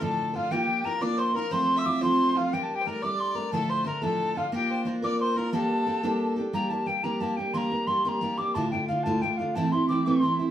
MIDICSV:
0, 0, Header, 1, 4, 480
1, 0, Start_track
1, 0, Tempo, 335008
1, 736, Time_signature, 6, 3, 24, 8
1, 15054, End_track
2, 0, Start_track
2, 0, Title_t, "Tin whistle"
2, 0, Program_c, 0, 75
2, 38, Note_on_c, 0, 81, 91
2, 508, Note_on_c, 0, 77, 89
2, 530, Note_off_c, 0, 81, 0
2, 736, Note_on_c, 0, 79, 103
2, 757, Note_off_c, 0, 77, 0
2, 1216, Note_on_c, 0, 82, 90
2, 1238, Note_off_c, 0, 79, 0
2, 1454, Note_on_c, 0, 86, 101
2, 1475, Note_off_c, 0, 82, 0
2, 1708, Note_on_c, 0, 84, 88
2, 1729, Note_off_c, 0, 86, 0
2, 1942, Note_on_c, 0, 82, 92
2, 1964, Note_off_c, 0, 84, 0
2, 2188, Note_on_c, 0, 84, 110
2, 2210, Note_off_c, 0, 82, 0
2, 2557, Note_on_c, 0, 88, 92
2, 2579, Note_off_c, 0, 84, 0
2, 2660, Note_on_c, 0, 86, 90
2, 2682, Note_off_c, 0, 88, 0
2, 2897, Note_off_c, 0, 86, 0
2, 2902, Note_on_c, 0, 84, 99
2, 3392, Note_on_c, 0, 77, 82
2, 3413, Note_off_c, 0, 84, 0
2, 3629, Note_on_c, 0, 79, 91
2, 3650, Note_off_c, 0, 77, 0
2, 3767, Note_on_c, 0, 81, 80
2, 3788, Note_off_c, 0, 79, 0
2, 3944, Note_on_c, 0, 79, 102
2, 3965, Note_off_c, 0, 81, 0
2, 4113, Note_on_c, 0, 82, 85
2, 4134, Note_off_c, 0, 79, 0
2, 4332, Note_on_c, 0, 86, 98
2, 4353, Note_off_c, 0, 82, 0
2, 4578, Note_on_c, 0, 84, 86
2, 4599, Note_off_c, 0, 86, 0
2, 4804, Note_on_c, 0, 82, 88
2, 4825, Note_off_c, 0, 84, 0
2, 5037, Note_on_c, 0, 81, 101
2, 5059, Note_off_c, 0, 82, 0
2, 5292, Note_on_c, 0, 84, 87
2, 5314, Note_off_c, 0, 81, 0
2, 5526, Note_off_c, 0, 84, 0
2, 5534, Note_on_c, 0, 82, 86
2, 5773, Note_on_c, 0, 81, 96
2, 5795, Note_off_c, 0, 82, 0
2, 6264, Note_on_c, 0, 77, 81
2, 6285, Note_off_c, 0, 81, 0
2, 6497, Note_off_c, 0, 77, 0
2, 6509, Note_on_c, 0, 79, 99
2, 6898, Note_off_c, 0, 79, 0
2, 7216, Note_on_c, 0, 86, 94
2, 7459, Note_on_c, 0, 84, 85
2, 7481, Note_off_c, 0, 86, 0
2, 7704, Note_on_c, 0, 82, 78
2, 7726, Note_off_c, 0, 84, 0
2, 7919, Note_off_c, 0, 82, 0
2, 7928, Note_on_c, 0, 81, 91
2, 9073, Note_off_c, 0, 81, 0
2, 9370, Note_on_c, 0, 82, 100
2, 9597, Note_on_c, 0, 81, 89
2, 9618, Note_off_c, 0, 82, 0
2, 9838, Note_on_c, 0, 79, 88
2, 9860, Note_off_c, 0, 81, 0
2, 10078, Note_on_c, 0, 82, 101
2, 10100, Note_off_c, 0, 79, 0
2, 10322, Note_on_c, 0, 81, 88
2, 10344, Note_off_c, 0, 82, 0
2, 10550, Note_on_c, 0, 79, 91
2, 10571, Note_off_c, 0, 81, 0
2, 10796, Note_on_c, 0, 84, 96
2, 10818, Note_off_c, 0, 79, 0
2, 10851, Note_on_c, 0, 82, 104
2, 10865, Note_off_c, 0, 84, 0
2, 11276, Note_on_c, 0, 84, 93
2, 11298, Note_off_c, 0, 82, 0
2, 11514, Note_off_c, 0, 84, 0
2, 11514, Note_on_c, 0, 84, 94
2, 11580, Note_on_c, 0, 82, 102
2, 11594, Note_off_c, 0, 84, 0
2, 12001, Note_on_c, 0, 86, 101
2, 12022, Note_off_c, 0, 82, 0
2, 12242, Note_on_c, 0, 81, 110
2, 12264, Note_off_c, 0, 86, 0
2, 12465, Note_off_c, 0, 81, 0
2, 12474, Note_on_c, 0, 79, 89
2, 12708, Note_off_c, 0, 79, 0
2, 12717, Note_on_c, 0, 77, 88
2, 12943, Note_on_c, 0, 81, 99
2, 12965, Note_off_c, 0, 77, 0
2, 13203, Note_on_c, 0, 79, 88
2, 13225, Note_off_c, 0, 81, 0
2, 13428, Note_on_c, 0, 77, 89
2, 13449, Note_off_c, 0, 79, 0
2, 13685, Note_on_c, 0, 81, 107
2, 13707, Note_off_c, 0, 77, 0
2, 13924, Note_on_c, 0, 84, 95
2, 13945, Note_off_c, 0, 81, 0
2, 14150, Note_off_c, 0, 84, 0
2, 14159, Note_on_c, 0, 86, 92
2, 14403, Note_on_c, 0, 84, 100
2, 14424, Note_off_c, 0, 86, 0
2, 14804, Note_off_c, 0, 84, 0
2, 15054, End_track
3, 0, Start_track
3, 0, Title_t, "Fiddle"
3, 0, Program_c, 1, 110
3, 27, Note_on_c, 1, 69, 75
3, 502, Note_off_c, 1, 69, 0
3, 510, Note_on_c, 1, 65, 73
3, 752, Note_on_c, 1, 67, 76
3, 774, Note_off_c, 1, 65, 0
3, 1230, Note_on_c, 1, 70, 78
3, 1251, Note_off_c, 1, 67, 0
3, 1460, Note_on_c, 1, 74, 86
3, 1482, Note_off_c, 1, 70, 0
3, 1689, Note_on_c, 1, 72, 78
3, 1711, Note_off_c, 1, 74, 0
3, 1918, Note_off_c, 1, 72, 0
3, 1927, Note_on_c, 1, 70, 81
3, 2166, Note_on_c, 1, 72, 83
3, 2187, Note_off_c, 1, 70, 0
3, 2526, Note_on_c, 1, 76, 85
3, 2547, Note_off_c, 1, 72, 0
3, 2885, Note_on_c, 1, 72, 85
3, 2907, Note_off_c, 1, 76, 0
3, 3372, Note_on_c, 1, 65, 73
3, 3393, Note_off_c, 1, 72, 0
3, 3618, Note_on_c, 1, 67, 69
3, 3639, Note_off_c, 1, 65, 0
3, 3775, Note_off_c, 1, 67, 0
3, 3933, Note_on_c, 1, 67, 73
3, 4032, Note_on_c, 1, 72, 55
3, 4053, Note_off_c, 1, 67, 0
3, 4088, Note_on_c, 1, 70, 76
3, 4109, Note_off_c, 1, 72, 0
3, 4329, Note_on_c, 1, 74, 86
3, 4351, Note_off_c, 1, 70, 0
3, 5050, Note_off_c, 1, 74, 0
3, 5056, Note_on_c, 1, 69, 77
3, 5295, Note_on_c, 1, 72, 77
3, 5317, Note_off_c, 1, 69, 0
3, 5542, Note_on_c, 1, 70, 72
3, 5563, Note_off_c, 1, 72, 0
3, 5776, Note_off_c, 1, 70, 0
3, 5795, Note_on_c, 1, 69, 74
3, 6276, Note_on_c, 1, 65, 69
3, 6298, Note_off_c, 1, 69, 0
3, 6489, Note_off_c, 1, 65, 0
3, 6498, Note_on_c, 1, 67, 73
3, 6740, Note_on_c, 1, 72, 72
3, 6762, Note_off_c, 1, 67, 0
3, 6976, Note_off_c, 1, 72, 0
3, 7222, Note_on_c, 1, 74, 78
3, 7440, Note_off_c, 1, 74, 0
3, 7461, Note_on_c, 1, 72, 75
3, 7689, Note_on_c, 1, 70, 73
3, 7710, Note_off_c, 1, 72, 0
3, 7929, Note_on_c, 1, 69, 69
3, 7950, Note_off_c, 1, 70, 0
3, 9131, Note_off_c, 1, 69, 0
3, 15054, End_track
4, 0, Start_track
4, 0, Title_t, "Steel-string acoustic guitar"
4, 0, Program_c, 2, 25
4, 8, Note_on_c, 2, 69, 68
4, 14, Note_on_c, 2, 57, 63
4, 23, Note_on_c, 2, 62, 62
4, 27, Note_on_c, 2, 50, 61
4, 29, Note_on_c, 2, 53, 60
4, 41, Note_on_c, 2, 45, 52
4, 464, Note_off_c, 2, 69, 0
4, 481, Note_on_c, 2, 69, 51
4, 482, Note_off_c, 2, 57, 0
4, 495, Note_off_c, 2, 62, 0
4, 499, Note_on_c, 2, 57, 45
4, 502, Note_off_c, 2, 50, 0
4, 509, Note_off_c, 2, 45, 0
4, 512, Note_on_c, 2, 62, 44
4, 524, Note_on_c, 2, 50, 42
4, 722, Note_off_c, 2, 62, 0
4, 724, Note_off_c, 2, 50, 0
4, 729, Note_off_c, 2, 69, 0
4, 730, Note_on_c, 2, 58, 68
4, 738, Note_off_c, 2, 57, 0
4, 739, Note_on_c, 2, 62, 74
4, 746, Note_on_c, 2, 65, 80
4, 759, Note_on_c, 2, 70, 86
4, 1188, Note_off_c, 2, 58, 0
4, 1205, Note_on_c, 2, 58, 53
4, 1207, Note_off_c, 2, 62, 0
4, 1221, Note_off_c, 2, 65, 0
4, 1224, Note_on_c, 2, 62, 53
4, 1227, Note_off_c, 2, 70, 0
4, 1237, Note_on_c, 2, 65, 63
4, 1250, Note_on_c, 2, 70, 64
4, 1425, Note_off_c, 2, 70, 0
4, 1435, Note_off_c, 2, 65, 0
4, 1442, Note_on_c, 2, 70, 68
4, 1445, Note_off_c, 2, 62, 0
4, 1450, Note_off_c, 2, 58, 0
4, 1452, Note_on_c, 2, 65, 65
4, 1462, Note_on_c, 2, 62, 62
4, 1472, Note_on_c, 2, 58, 56
4, 1902, Note_off_c, 2, 70, 0
4, 1920, Note_on_c, 2, 70, 48
4, 1933, Note_off_c, 2, 65, 0
4, 1938, Note_off_c, 2, 62, 0
4, 1943, Note_off_c, 2, 58, 0
4, 1947, Note_on_c, 2, 65, 48
4, 1967, Note_on_c, 2, 62, 42
4, 2164, Note_off_c, 2, 53, 0
4, 2164, Note_on_c, 2, 53, 74
4, 2167, Note_off_c, 2, 70, 0
4, 2173, Note_off_c, 2, 62, 0
4, 2178, Note_on_c, 2, 60, 78
4, 2181, Note_off_c, 2, 65, 0
4, 2192, Note_on_c, 2, 57, 80
4, 2199, Note_on_c, 2, 65, 77
4, 2624, Note_off_c, 2, 53, 0
4, 2641, Note_on_c, 2, 53, 57
4, 2643, Note_off_c, 2, 60, 0
4, 2660, Note_on_c, 2, 60, 57
4, 2666, Note_off_c, 2, 65, 0
4, 2668, Note_off_c, 2, 57, 0
4, 2674, Note_on_c, 2, 57, 55
4, 2686, Note_on_c, 2, 65, 62
4, 2877, Note_off_c, 2, 65, 0
4, 2885, Note_off_c, 2, 57, 0
4, 2887, Note_off_c, 2, 53, 0
4, 2894, Note_on_c, 2, 65, 62
4, 2897, Note_off_c, 2, 60, 0
4, 2902, Note_on_c, 2, 57, 61
4, 2911, Note_on_c, 2, 60, 55
4, 2922, Note_on_c, 2, 53, 56
4, 3350, Note_off_c, 2, 65, 0
4, 3367, Note_on_c, 2, 65, 52
4, 3382, Note_off_c, 2, 60, 0
4, 3385, Note_off_c, 2, 57, 0
4, 3387, Note_off_c, 2, 53, 0
4, 3391, Note_on_c, 2, 57, 44
4, 3416, Note_on_c, 2, 60, 39
4, 3610, Note_off_c, 2, 65, 0
4, 3621, Note_off_c, 2, 57, 0
4, 3623, Note_on_c, 2, 55, 65
4, 3626, Note_off_c, 2, 60, 0
4, 3631, Note_on_c, 2, 62, 74
4, 3647, Note_on_c, 2, 70, 84
4, 4076, Note_off_c, 2, 55, 0
4, 4093, Note_on_c, 2, 55, 56
4, 4105, Note_off_c, 2, 62, 0
4, 4110, Note_off_c, 2, 70, 0
4, 4111, Note_on_c, 2, 62, 50
4, 4123, Note_on_c, 2, 57, 56
4, 4135, Note_on_c, 2, 70, 58
4, 4328, Note_off_c, 2, 57, 0
4, 4332, Note_off_c, 2, 55, 0
4, 4338, Note_off_c, 2, 62, 0
4, 4346, Note_on_c, 2, 57, 61
4, 4353, Note_off_c, 2, 70, 0
4, 4355, Note_on_c, 2, 62, 57
4, 4366, Note_on_c, 2, 55, 54
4, 4799, Note_on_c, 2, 70, 49
4, 4805, Note_off_c, 2, 57, 0
4, 4822, Note_on_c, 2, 57, 46
4, 4828, Note_off_c, 2, 55, 0
4, 4837, Note_off_c, 2, 62, 0
4, 4843, Note_on_c, 2, 62, 40
4, 5045, Note_off_c, 2, 70, 0
4, 5045, Note_on_c, 2, 45, 68
4, 5051, Note_off_c, 2, 62, 0
4, 5052, Note_on_c, 2, 53, 71
4, 5053, Note_off_c, 2, 57, 0
4, 5059, Note_on_c, 2, 50, 71
4, 5068, Note_on_c, 2, 62, 76
4, 5070, Note_on_c, 2, 57, 79
4, 5078, Note_on_c, 2, 69, 81
4, 5504, Note_off_c, 2, 50, 0
4, 5510, Note_on_c, 2, 50, 54
4, 5524, Note_off_c, 2, 57, 0
4, 5526, Note_off_c, 2, 62, 0
4, 5528, Note_off_c, 2, 45, 0
4, 5531, Note_on_c, 2, 62, 59
4, 5532, Note_off_c, 2, 53, 0
4, 5537, Note_off_c, 2, 69, 0
4, 5541, Note_on_c, 2, 57, 58
4, 5554, Note_on_c, 2, 69, 65
4, 5739, Note_off_c, 2, 69, 0
4, 5750, Note_off_c, 2, 57, 0
4, 5756, Note_on_c, 2, 69, 71
4, 5757, Note_off_c, 2, 62, 0
4, 5761, Note_off_c, 2, 50, 0
4, 5767, Note_on_c, 2, 57, 66
4, 5774, Note_on_c, 2, 62, 59
4, 5780, Note_on_c, 2, 50, 62
4, 5785, Note_on_c, 2, 53, 56
4, 5789, Note_on_c, 2, 45, 60
4, 6213, Note_off_c, 2, 69, 0
4, 6230, Note_on_c, 2, 69, 52
4, 6234, Note_off_c, 2, 57, 0
4, 6251, Note_on_c, 2, 57, 45
4, 6255, Note_off_c, 2, 62, 0
4, 6258, Note_off_c, 2, 53, 0
4, 6260, Note_off_c, 2, 45, 0
4, 6260, Note_on_c, 2, 62, 43
4, 6267, Note_off_c, 2, 50, 0
4, 6273, Note_on_c, 2, 50, 37
4, 6473, Note_off_c, 2, 50, 0
4, 6475, Note_off_c, 2, 62, 0
4, 6479, Note_on_c, 2, 58, 74
4, 6481, Note_off_c, 2, 69, 0
4, 6491, Note_off_c, 2, 57, 0
4, 6492, Note_on_c, 2, 62, 72
4, 6505, Note_on_c, 2, 65, 73
4, 6512, Note_on_c, 2, 70, 83
4, 6945, Note_off_c, 2, 58, 0
4, 6951, Note_on_c, 2, 58, 57
4, 6964, Note_off_c, 2, 62, 0
4, 6965, Note_off_c, 2, 65, 0
4, 6969, Note_on_c, 2, 62, 64
4, 6982, Note_on_c, 2, 65, 60
4, 6989, Note_off_c, 2, 70, 0
4, 6994, Note_on_c, 2, 70, 59
4, 7179, Note_off_c, 2, 70, 0
4, 7195, Note_off_c, 2, 65, 0
4, 7197, Note_on_c, 2, 70, 68
4, 7201, Note_off_c, 2, 58, 0
4, 7202, Note_off_c, 2, 62, 0
4, 7212, Note_on_c, 2, 65, 65
4, 7219, Note_on_c, 2, 62, 54
4, 7228, Note_on_c, 2, 58, 54
4, 7672, Note_off_c, 2, 70, 0
4, 7678, Note_on_c, 2, 70, 50
4, 7683, Note_off_c, 2, 65, 0
4, 7700, Note_on_c, 2, 65, 47
4, 7714, Note_off_c, 2, 62, 0
4, 7720, Note_on_c, 2, 62, 42
4, 7917, Note_off_c, 2, 62, 0
4, 7918, Note_on_c, 2, 55, 68
4, 7920, Note_off_c, 2, 58, 0
4, 7925, Note_off_c, 2, 70, 0
4, 7925, Note_on_c, 2, 58, 80
4, 7934, Note_on_c, 2, 62, 75
4, 7936, Note_off_c, 2, 65, 0
4, 7944, Note_on_c, 2, 67, 80
4, 7950, Note_on_c, 2, 69, 82
4, 8396, Note_off_c, 2, 58, 0
4, 8402, Note_on_c, 2, 58, 54
4, 8409, Note_off_c, 2, 62, 0
4, 8414, Note_on_c, 2, 62, 57
4, 8421, Note_off_c, 2, 69, 0
4, 8425, Note_off_c, 2, 67, 0
4, 8430, Note_on_c, 2, 67, 62
4, 8446, Note_on_c, 2, 69, 58
4, 8489, Note_off_c, 2, 55, 0
4, 8627, Note_off_c, 2, 69, 0
4, 8633, Note_off_c, 2, 67, 0
4, 8643, Note_off_c, 2, 62, 0
4, 8644, Note_on_c, 2, 69, 72
4, 8647, Note_off_c, 2, 58, 0
4, 8650, Note_on_c, 2, 67, 76
4, 8660, Note_on_c, 2, 62, 69
4, 8667, Note_on_c, 2, 58, 67
4, 8673, Note_on_c, 2, 55, 61
4, 9098, Note_off_c, 2, 69, 0
4, 9115, Note_on_c, 2, 69, 53
4, 9134, Note_off_c, 2, 67, 0
4, 9140, Note_on_c, 2, 67, 50
4, 9154, Note_off_c, 2, 62, 0
4, 9158, Note_off_c, 2, 55, 0
4, 9158, Note_off_c, 2, 58, 0
4, 9160, Note_on_c, 2, 62, 43
4, 9361, Note_on_c, 2, 55, 74
4, 9364, Note_off_c, 2, 69, 0
4, 9367, Note_off_c, 2, 62, 0
4, 9374, Note_on_c, 2, 58, 71
4, 9376, Note_off_c, 2, 67, 0
4, 9384, Note_on_c, 2, 62, 83
4, 9396, Note_on_c, 2, 67, 82
4, 9586, Note_off_c, 2, 67, 0
4, 9603, Note_on_c, 2, 67, 52
4, 9607, Note_off_c, 2, 55, 0
4, 9610, Note_off_c, 2, 62, 0
4, 9613, Note_off_c, 2, 58, 0
4, 9627, Note_on_c, 2, 62, 44
4, 9644, Note_on_c, 2, 58, 40
4, 9834, Note_on_c, 2, 55, 56
4, 9837, Note_off_c, 2, 58, 0
4, 9848, Note_off_c, 2, 67, 0
4, 9852, Note_off_c, 2, 62, 0
4, 9855, Note_on_c, 2, 58, 55
4, 9869, Note_on_c, 2, 62, 66
4, 9880, Note_on_c, 2, 67, 56
4, 10066, Note_off_c, 2, 67, 0
4, 10077, Note_off_c, 2, 62, 0
4, 10083, Note_off_c, 2, 55, 0
4, 10083, Note_on_c, 2, 67, 66
4, 10086, Note_off_c, 2, 58, 0
4, 10095, Note_on_c, 2, 62, 61
4, 10103, Note_on_c, 2, 58, 58
4, 10110, Note_on_c, 2, 55, 49
4, 10305, Note_off_c, 2, 55, 0
4, 10320, Note_off_c, 2, 58, 0
4, 10322, Note_on_c, 2, 55, 56
4, 10328, Note_off_c, 2, 67, 0
4, 10334, Note_off_c, 2, 62, 0
4, 10337, Note_on_c, 2, 58, 58
4, 10353, Note_on_c, 2, 62, 61
4, 10367, Note_on_c, 2, 67, 66
4, 10543, Note_off_c, 2, 67, 0
4, 10560, Note_on_c, 2, 67, 47
4, 10568, Note_off_c, 2, 55, 0
4, 10570, Note_off_c, 2, 62, 0
4, 10575, Note_off_c, 2, 58, 0
4, 10587, Note_on_c, 2, 62, 43
4, 10603, Note_on_c, 2, 58, 39
4, 10792, Note_off_c, 2, 58, 0
4, 10798, Note_on_c, 2, 55, 68
4, 10801, Note_off_c, 2, 62, 0
4, 10807, Note_off_c, 2, 67, 0
4, 10809, Note_on_c, 2, 58, 79
4, 10818, Note_on_c, 2, 62, 81
4, 10827, Note_on_c, 2, 67, 80
4, 11017, Note_off_c, 2, 67, 0
4, 11034, Note_on_c, 2, 67, 51
4, 11041, Note_off_c, 2, 62, 0
4, 11046, Note_off_c, 2, 55, 0
4, 11051, Note_off_c, 2, 58, 0
4, 11058, Note_on_c, 2, 62, 47
4, 11076, Note_on_c, 2, 58, 42
4, 11279, Note_off_c, 2, 58, 0
4, 11282, Note_on_c, 2, 55, 57
4, 11284, Note_off_c, 2, 67, 0
4, 11296, Note_off_c, 2, 62, 0
4, 11296, Note_on_c, 2, 58, 54
4, 11312, Note_on_c, 2, 62, 60
4, 11324, Note_on_c, 2, 67, 62
4, 11514, Note_off_c, 2, 67, 0
4, 11525, Note_off_c, 2, 62, 0
4, 11528, Note_off_c, 2, 55, 0
4, 11531, Note_on_c, 2, 67, 69
4, 11535, Note_off_c, 2, 58, 0
4, 11543, Note_on_c, 2, 62, 65
4, 11551, Note_on_c, 2, 58, 55
4, 11561, Note_on_c, 2, 55, 59
4, 11747, Note_off_c, 2, 55, 0
4, 11765, Note_off_c, 2, 58, 0
4, 11765, Note_on_c, 2, 55, 60
4, 11773, Note_off_c, 2, 67, 0
4, 11779, Note_off_c, 2, 62, 0
4, 11782, Note_on_c, 2, 58, 62
4, 11796, Note_on_c, 2, 62, 64
4, 11809, Note_on_c, 2, 67, 65
4, 11988, Note_off_c, 2, 67, 0
4, 12006, Note_on_c, 2, 67, 50
4, 12010, Note_off_c, 2, 55, 0
4, 12014, Note_off_c, 2, 62, 0
4, 12019, Note_off_c, 2, 58, 0
4, 12031, Note_on_c, 2, 62, 47
4, 12048, Note_on_c, 2, 58, 44
4, 12250, Note_on_c, 2, 38, 78
4, 12251, Note_off_c, 2, 67, 0
4, 12258, Note_on_c, 2, 45, 72
4, 12259, Note_off_c, 2, 62, 0
4, 12263, Note_on_c, 2, 50, 76
4, 12264, Note_off_c, 2, 58, 0
4, 12270, Note_on_c, 2, 57, 76
4, 12277, Note_on_c, 2, 62, 77
4, 12281, Note_on_c, 2, 65, 80
4, 12471, Note_off_c, 2, 65, 0
4, 12488, Note_on_c, 2, 65, 50
4, 12491, Note_off_c, 2, 62, 0
4, 12493, Note_off_c, 2, 38, 0
4, 12497, Note_off_c, 2, 45, 0
4, 12499, Note_off_c, 2, 50, 0
4, 12503, Note_off_c, 2, 57, 0
4, 12508, Note_on_c, 2, 62, 48
4, 12521, Note_on_c, 2, 57, 46
4, 12535, Note_on_c, 2, 50, 41
4, 12714, Note_off_c, 2, 50, 0
4, 12731, Note_on_c, 2, 50, 58
4, 12732, Note_off_c, 2, 65, 0
4, 12733, Note_off_c, 2, 57, 0
4, 12742, Note_off_c, 2, 62, 0
4, 12750, Note_on_c, 2, 57, 57
4, 12764, Note_on_c, 2, 62, 64
4, 12778, Note_on_c, 2, 65, 62
4, 12961, Note_off_c, 2, 65, 0
4, 12969, Note_off_c, 2, 62, 0
4, 12974, Note_off_c, 2, 50, 0
4, 12975, Note_off_c, 2, 57, 0
4, 12978, Note_on_c, 2, 65, 72
4, 12986, Note_on_c, 2, 62, 64
4, 12992, Note_on_c, 2, 57, 66
4, 12993, Note_on_c, 2, 50, 65
4, 13005, Note_on_c, 2, 45, 65
4, 13006, Note_on_c, 2, 38, 57
4, 13193, Note_off_c, 2, 50, 0
4, 13210, Note_off_c, 2, 57, 0
4, 13211, Note_on_c, 2, 50, 59
4, 13218, Note_off_c, 2, 65, 0
4, 13222, Note_off_c, 2, 62, 0
4, 13227, Note_on_c, 2, 57, 64
4, 13231, Note_off_c, 2, 45, 0
4, 13232, Note_off_c, 2, 38, 0
4, 13240, Note_on_c, 2, 62, 59
4, 13256, Note_on_c, 2, 65, 60
4, 13433, Note_off_c, 2, 65, 0
4, 13447, Note_off_c, 2, 62, 0
4, 13450, Note_on_c, 2, 65, 50
4, 13454, Note_off_c, 2, 50, 0
4, 13462, Note_off_c, 2, 57, 0
4, 13464, Note_on_c, 2, 62, 45
4, 13482, Note_on_c, 2, 57, 42
4, 13494, Note_on_c, 2, 50, 42
4, 13691, Note_on_c, 2, 45, 79
4, 13694, Note_off_c, 2, 65, 0
4, 13697, Note_off_c, 2, 50, 0
4, 13701, Note_off_c, 2, 62, 0
4, 13702, Note_off_c, 2, 57, 0
4, 13703, Note_on_c, 2, 52, 77
4, 13708, Note_on_c, 2, 60, 80
4, 13719, Note_on_c, 2, 57, 79
4, 13723, Note_on_c, 2, 64, 87
4, 13909, Note_off_c, 2, 64, 0
4, 13926, Note_on_c, 2, 64, 50
4, 13930, Note_off_c, 2, 57, 0
4, 13935, Note_off_c, 2, 45, 0
4, 13941, Note_off_c, 2, 52, 0
4, 13943, Note_off_c, 2, 60, 0
4, 13947, Note_on_c, 2, 57, 42
4, 13970, Note_on_c, 2, 60, 42
4, 14163, Note_on_c, 2, 52, 53
4, 14168, Note_off_c, 2, 60, 0
4, 14172, Note_off_c, 2, 64, 0
4, 14183, Note_off_c, 2, 57, 0
4, 14185, Note_on_c, 2, 60, 58
4, 14201, Note_on_c, 2, 57, 55
4, 14212, Note_on_c, 2, 64, 67
4, 14396, Note_off_c, 2, 64, 0
4, 14406, Note_off_c, 2, 57, 0
4, 14411, Note_off_c, 2, 52, 0
4, 14413, Note_on_c, 2, 64, 64
4, 14414, Note_off_c, 2, 60, 0
4, 14423, Note_on_c, 2, 57, 68
4, 14431, Note_on_c, 2, 60, 66
4, 14436, Note_on_c, 2, 52, 58
4, 14441, Note_on_c, 2, 45, 57
4, 14630, Note_off_c, 2, 52, 0
4, 14647, Note_on_c, 2, 52, 58
4, 14649, Note_off_c, 2, 60, 0
4, 14657, Note_off_c, 2, 64, 0
4, 14662, Note_off_c, 2, 57, 0
4, 14666, Note_on_c, 2, 60, 60
4, 14670, Note_off_c, 2, 45, 0
4, 14681, Note_on_c, 2, 57, 59
4, 14689, Note_on_c, 2, 64, 63
4, 14872, Note_off_c, 2, 64, 0
4, 14889, Note_on_c, 2, 64, 47
4, 14893, Note_off_c, 2, 57, 0
4, 14894, Note_off_c, 2, 52, 0
4, 14903, Note_off_c, 2, 60, 0
4, 14910, Note_on_c, 2, 57, 40
4, 14930, Note_on_c, 2, 60, 40
4, 15054, Note_off_c, 2, 57, 0
4, 15054, Note_off_c, 2, 60, 0
4, 15054, Note_off_c, 2, 64, 0
4, 15054, End_track
0, 0, End_of_file